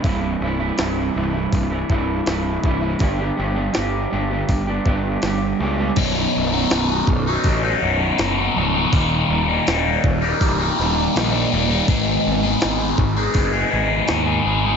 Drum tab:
CC |--------|--------|x-------|--------|
HH |o-o-o-o-|o-o-o-o-|o-o-o-o-|o-o-o-o-|
SD |--o---o-|--o---o-|--o---o-|--o--oo-|
BD |o---oo-o|o---oo--|o--oo---|o--oo---|

CC |--------|
HH |o-o-o-o-|
SD |--o---o-|
BD |o--oo---|